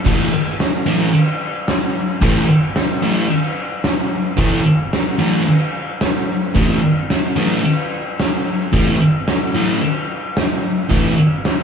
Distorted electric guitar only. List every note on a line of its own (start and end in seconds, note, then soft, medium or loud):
0.05 0.27 A2 medium
0.05 0.28 E3 medium
0.05 0.28 A3 loud
0.86 1.08 A2 medium
0.86 1.08 E3 medium
0.86 1.09 A3 loud
2.21 2.43 A2 medium
2.21 2.44 E3 medium
2.21 2.44 A3 loud
3.02 3.25 A2 medium
3.02 3.25 E3 loud
3.02 3.25 A3 loud
4.37 4.60 A2 medium
4.37 4.60 E3 medium
4.37 4.61 A3 loud
5.19 5.41 A2 medium
5.19 5.42 E3 medium
5.19 5.42 A3 medium
6.55 6.77 A2 loud
6.55 6.77 E3 loud
6.55 6.78 A3 loud
7.36 7.59 A2 medium
7.36 7.59 E3 loud
7.36 7.59 A3 loud
8.73 8.95 A2 medium
8.73 8.95 E3 medium
8.73 8.96 A3 loud
9.55 9.76 A2 medium
9.55 9.77 E3 medium
9.55 9.77 A3 loud
10.90 11.12 A2 medium
10.90 11.13 E3 loud
10.90 11.13 A3 loud